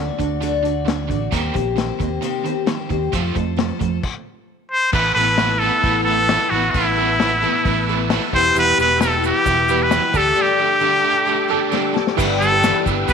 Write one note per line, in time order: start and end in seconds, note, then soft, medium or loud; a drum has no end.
0.00 0.17 D3 medium
0.00 0.19 A3 medium
0.00 0.20 D4 medium
0.00 0.19 F#4 medium
0.00 0.18 D5 medium
0.18 1.11 D2 medium
0.18 0.39 D3 medium
0.18 0.41 A3 soft
0.18 0.42 D4 soft
0.18 0.42 F#4 soft
0.18 0.42 D5 medium
0.18 kick medium
0.18 closed hi-hat medium
0.42 0.64 D3 medium
0.42 0.64 F#3 medium
0.42 0.65 A3 medium
0.42 0.65 D4 medium
0.42 0.65 F#4 medium
0.42 0.63 D5 medium
0.42 closed hi-hat medium
0.63 0.84 D3 medium
0.63 0.86 A3 soft
0.63 0.87 D4 soft
0.63 0.88 F#4 medium
0.63 0.87 D5 medium
0.63 closed hi-hat medium
0.86 1.07 D3 medium
0.86 1.10 A3 medium
0.86 1.10 D4 medium
0.86 1.10 F#4 medium
0.86 snare loud
0.86 closed hi-hat medium
0.90 1.09 D5 medium
1.08 1.27 A1 medium
1.08 1.29 D3 medium
1.08 1.33 D4 medium
1.08 1.33 F#4 medium
1.08 1.32 D5 medium
1.08 kick medium
1.08 closed hi-hat medium
1.12 1.32 A3 soft
1.32 1.50 D#2 loud
1.32 1.54 C3 medium
1.32 1.55 D#3 medium
1.32 1.54 G3 medium
1.32 1.54 A#3 medium
1.32 1.55 C4 medium
1.32 1.53 G4 loud
1.32 1.52 C5 loud
1.32 kick loud
1.32 closed hi-hat medium
1.53 1.90 A#1 medium
1.53 1.75 D#3 medium
1.53 1.77 A#3 soft
1.53 1.75 C4 medium
1.53 1.77 G4 medium
1.53 1.77 C5 medium
1.53 kick medium
1.53 closed hi-hat medium
1.76 1.97 D#3 medium
1.76 2.00 A#3 medium
1.76 2.00 C4 medium
1.76 1.99 G4 medium
1.76 1.98 C5 medium
1.76 snare medium
1.76 closed hi-hat medium
1.99 2.17 D#2 medium
1.99 2.20 D#3 medium
1.99 2.23 A#3 medium
1.99 2.22 C4 soft
1.99 2.23 G4 medium
1.99 2.22 C5 medium
1.99 kick medium
1.99 closed hi-hat medium
2.22 2.45 C3 medium
2.22 2.45 D#3 medium
2.22 2.46 A#3 medium
2.22 2.45 C4 medium
2.22 2.45 G4 medium
2.22 2.44 C5 medium
2.22 closed hi-hat medium
2.45 2.65 D#3 medium
2.45 2.67 A#3 medium
2.45 2.67 G4 medium
2.45 2.68 C5 medium
2.45 closed hi-hat medium
2.49 2.65 C4 soft
2.66 2.88 D#3 medium
2.66 2.90 A#3 medium
2.66 2.90 C4 medium
2.66 2.90 G4 medium
2.66 2.88 C5 medium
2.66 snare loud
2.66 closed hi-hat medium
2.90 3.08 D#2 medium
2.90 3.10 D#3 medium
2.90 3.13 A#3 medium
2.90 3.12 C4 soft
2.90 3.13 G4 medium
2.90 3.13 C5 soft
2.90 kick medium
2.90 closed hi-hat medium
3.12 3.30 F2 medium
3.12 3.35 F3 medium
3.12 3.34 A3 medium
3.12 3.35 C4 medium
3.12 3.36 F4 loud
3.12 3.35 A4 medium
3.12 3.34 C5 loud
3.12 kick loud
3.12 closed hi-hat medium
3.35 3.70 F2 medium
3.35 3.56 F3 medium
3.35 3.56 A3 medium
3.35 3.57 F4 soft
3.35 3.58 A4 medium
3.35 3.58 C5 medium
3.35 kick medium
3.35 closed hi-hat medium
3.56 3.80 F3 medium
3.56 3.78 A3 medium
3.56 3.81 F4 medium
3.56 3.80 A4 medium
3.56 3.79 C5 medium
3.56 snare loud
3.56 closed hi-hat medium
3.80 3.98 F2 medium
3.80 4.00 F3 medium
3.80 4.01 A3 medium
3.80 4.04 F4 soft
3.80 4.04 A4 medium
3.80 4.03 C5 medium
3.80 kick medium
3.80 closed hi-hat medium
4.03 kick loud
4.03 crash medium
4.72 4.92 C5 loud
4.92 5.11 A1 loud
4.92 5.63 A2 loud
4.92 5.62 E3 loud
4.92 5.16 A3 medium
4.92 5.17 B3 medium
4.92 5.17 E4 medium
4.92 5.15 A4 medium
4.92 8.29 B4 medium
4.92 5.14 B4 loud
4.92 8.29 A5 soft
4.92 10.10 E6 medium
4.92 kick loud
4.92 crash loud
5.14 5.68 A1 medium
5.14 5.38 E4 soft
5.14 5.39 A4 medium
5.14 5.61 B4 loud
5.19 5.38 B3 soft
5.38 5.61 A3 medium
5.38 5.62 B3 medium
5.38 5.62 E4 medium
5.38 5.61 A4 medium
5.38 snare loud
5.38 open hi-hat soft
5.59 6.27 A2 medium
5.59 6.29 E3 medium
5.59 6.28 A3 medium
5.59 6.03 A4 loud
5.59 5.84 A4 medium
5.63 5.84 B3 soft
5.63 5.84 E4 soft
5.83 6.36 A1 loud
5.83 6.06 A3 medium
5.83 6.07 B3 medium
5.83 6.07 E4 medium
5.83 6.06 A4 medium
5.83 kick loud
5.83 open hi-hat medium
6.04 6.52 A4 loud
6.04 6.30 A4 medium
6.09 6.29 B3 soft
6.09 6.30 E4 medium
6.28 6.73 A2 medium
6.28 6.74 E3 medium
6.28 6.52 A3 medium
6.28 6.52 B3 medium
6.28 6.52 E4 medium
6.28 6.50 A4 medium
6.28 snare loud
6.28 open hi-hat medium
6.50 6.69 A1 medium
6.50 6.74 E4 medium
6.50 6.72 F#4 medium
6.50 6.74 A4 medium
6.55 6.73 B3 soft
6.71 7.44 A1 loud
6.71 7.41 A2 medium
6.71 7.43 E3 medium
6.71 6.97 A3 medium
6.71 6.97 B3 medium
6.71 8.08 E4 medium
6.71 kick loud
6.71 open hi-hat medium
6.76 6.98 E4 medium
6.76 6.96 A4 medium
6.97 7.20 B3 soft
6.97 7.21 E4 medium
6.97 7.20 A4 medium
7.20 7.43 A3 medium
7.20 7.43 B3 medium
7.20 7.42 E4 medium
7.20 7.41 A4 medium
7.20 snare loud
7.20 open hi-hat soft
7.42 8.08 A2 medium
7.42 8.09 E3 medium
7.42 8.09 A3 medium
7.42 7.65 B3 medium
7.42 7.66 E4 medium
7.42 7.65 A4 medium
7.65 8.18 A1 loud
7.65 7.88 A3 medium
7.65 7.88 B3 medium
7.65 7.89 E4 medium
7.65 7.88 A4 medium
7.65 kick loud
7.65 open hi-hat medium
7.89 8.10 B3 soft
7.89 8.11 E4 medium
7.89 8.11 A4 medium
8.10 8.31 A2 medium
8.10 8.32 E3 medium
8.10 8.33 A3 medium
8.10 8.33 B3 medium
8.10 8.34 E4 medium
8.10 8.33 A4 medium
8.10 snare loud
8.10 open hi-hat medium
8.32 8.50 E1 loud
8.32 8.99 E2 medium
8.32 9.00 B2 medium
8.32 9.00 E3 medium
8.32 9.02 G3 medium
8.32 8.56 B3 soft
8.32 8.56 E4 medium
8.32 8.56 G4 soft
8.32 10.13 B4 medium
8.32 8.55 C5 loud
8.32 10.13 G5 medium
8.32 kick loud
8.55 8.73 E1 loud
8.55 8.78 E3 medium
8.55 8.79 G3 medium
8.55 8.79 B3 loud
8.55 9.13 E4 medium
8.55 8.78 E4 medium
8.55 9.14 G4 medium
8.55 8.77 G4 medium
8.55 9.14 B4 medium
8.55 8.78 B4 loud
8.55 open hi-hat medium
8.55 shaker medium
8.78 9.30 E1 medium
8.78 9.00 B3 soft
8.78 9.01 E4 medium
8.78 9.00 G4 soft
8.78 9.01 B4 loud
8.78 shaker medium
9.00 9.67 E2 medium
9.00 9.68 B2 medium
9.00 9.23 E3 medium
9.00 9.23 G3 medium
9.00 9.24 B3 medium
9.00 9.22 E4 medium
9.00 9.21 G4 medium
9.00 9.22 A4 medium
9.00 snare loud
9.00 open hi-hat soft
9.00 shaker medium
9.22 9.44 B3 soft
9.22 9.45 E4 soft
9.22 9.45 G4 medium
9.22 shaker medium
9.26 9.84 G4 loud
9.44 9.98 E1 loud
9.44 9.68 G3 medium
9.44 9.68 B3 medium
9.44 9.68 E4 medium
9.44 9.66 G4 medium
9.44 kick loud
9.44 open hi-hat medium
9.44 shaker medium
9.67 10.14 E2 medium
9.67 10.14 B2 medium
9.67 10.13 E3 medium
9.67 10.14 G3 medium
9.67 9.91 B3 soft
9.67 9.91 E4 medium
9.67 10.12 E4 medium
9.67 9.91 G4 medium
9.67 10.12 G4 medium
9.67 10.13 B4 medium
9.67 shaker medium
9.83 10.19 B4 medium
9.91 10.14 E3 medium
9.91 10.14 G3 medium
9.91 10.15 B3 medium
9.91 10.15 E4 medium
9.91 10.13 G4 medium
9.91 snare loud
9.91 open hi-hat medium
9.91 shaker loud
10.13 10.32 D2 medium
10.13 10.80 D3 loud
10.13 10.81 A3 medium
10.13 10.86 D4 medium
10.13 10.34 D4 soft
10.13 10.36 G4 medium
10.13 10.87 G4 medium
10.13 10.36 A4 medium
10.13 12.16 A4 medium
10.13 10.87 A4 medium
10.13 12.16 G5 medium
10.13 12.16 D6 medium
10.13 kick medium
10.13 shaker medium
10.17 10.43 A4 loud
10.35 10.59 D3 loud
10.35 10.59 G3 medium
10.35 10.59 D4 medium
10.35 10.58 G4 medium
10.35 10.57 A4 loud
10.42 11.75 G4 loud
10.58 10.80 D4 soft
10.58 10.80 G4 medium
10.58 10.81 A4 medium
10.80 11.04 D3 medium
10.80 11.04 G3 medium
10.80 11.49 A3 medium
10.80 11.04 D4 loud
10.80 11.04 G4 medium
10.80 11.03 A4 medium
11.04 11.26 D4 medium
11.04 11.26 G4 medium
11.04 11.27 A4 medium
11.26 11.49 G3 medium
11.26 11.50 D4 medium
11.26 11.49 G4 medium
11.26 11.47 A4 medium
11.48 11.95 A3 medium
11.48 11.93 D4 loud
11.48 11.71 D4 medium
11.48 11.93 G4 loud
11.48 11.72 G4 medium
11.48 11.72 A4 medium
11.48 11.94 A4 loud
11.53 11.95 D3 medium
11.72 11.95 D3 medium
11.72 11.95 G3 medium
11.72 11.95 D4 medium
11.72 11.95 G4 medium
11.72 11.93 A4 loud
11.72 11.93 D5 medium
11.72 snare medium
11.94 12.18 D4 medium
11.94 12.18 G4 soft
11.94 12.17 A4 medium
11.94 12.15 A5 medium
11.94 snare medium
12.07 snare medium
12.17 12.71 G1 loud
12.17 12.40 G2 loud
12.17 12.62 D3 loud
12.17 12.41 E3 medium
12.17 12.41 G3 loud
12.17 12.41 B3 loud
12.17 12.40 D4 medium
12.17 12.39 E4 medium
12.17 12.39 G4 medium
12.17 12.39 G4 loud
12.17 13.13 B4 medium
12.17 12.39 B4 loud
12.17 13.13 G5 medium
12.17 13.13 E6 medium
12.17 kick loud
12.17 crash loud
12.17 crash medium
12.17 shaker medium
12.40 12.63 G3 soft
12.40 12.63 B3 medium
12.40 12.64 D4 medium
12.40 12.63 G4 medium
12.40 12.82 A4 loud
12.40 shaker medium
12.51 12.66 E4 medium
12.51 12.66 G4 medium
12.51 12.67 B4 medium
12.63 12.86 G2 medium
12.63 13.09 D3 medium
12.63 12.86 E3 medium
12.63 12.86 G3 medium
12.63 12.86 B3 medium
12.63 12.86 D4 medium
12.63 12.84 G4 medium
12.63 snare medium
12.63 crash medium
12.63 shaker medium
12.75 13.13 E4 medium
12.75 13.13 G4 medium
12.75 13.13 B4 medium
12.86 13.04 G1 medium
12.86 13.08 G3 medium
12.86 13.09 B3 soft
12.86 13.09 D4 soft
12.86 13.08 G4 medium
12.86 kick medium
12.86 shaker medium
13.08 13.13 G1 medium
13.08 13.13 G3 medium
13.08 13.13 B3 medium
13.08 13.13 D4 medium
13.08 13.13 B4 loud
13.08 kick loud
13.08 crash medium
13.08 shaker medium